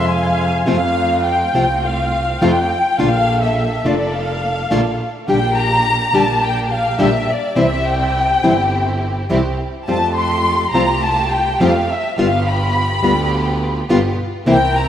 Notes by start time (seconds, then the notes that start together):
Already playing: F2 C3 F3 G#3 C4 F4
0.08 F5 G#5
0.66 F2 C3 F3 A3 C4 F4 F5
1.27 G5
1.54 C2 C3 F3 A3 C4 F4
1.85 F5
2.41 F2 C3 F3 A3 C4 F4 G5
2.99 A#1 D3 A3 A#3 D4 F4 A4 F5
3.43 E5
3.84 F1 D3 A3 A#3 D4 F4 A4 D5
4.14 F5
4.71 A#1 D3 A3 A#3 D4 F4 A4
5.28 A#1 D3 G3 A#3 D4 G4 G5
5.58 A#5
6.13 A#1 D3 G3 A#3 D4 G4 A5
6.44 G5
6.66 G5
6.72 F5
6.98 A#1 D3 G3 A#3 D4 G4 E5
7.30 D5
7.56 C2 C3 E3 G3 C4 E4 G4 E5
7.88 G5
8.43 G1 C3 E3 G3 C4 E4 G4
9.29 C2 C3 E3 G3 C4 E4 G4
9.87 F2 F3 G3 A3 C4 F4 G4 A5
10.17 C6
10.74 C2 F3 G3 A3 C4 F4 G4 A#5
11.04 A5
11.33 G5
11.60 F2 F3 G3 A3 C4 F4 G4 F5
11.90 E5
12.18 G1 G3 B3 F4 G4 F5
12.47 B5
13.03 D2 G3 B3 F4 G4
13.89 G1 G3 B3 F4 G4
14.46 C2 C3 E3 A#3 C4 E4 A#4 G5
14.77 A#5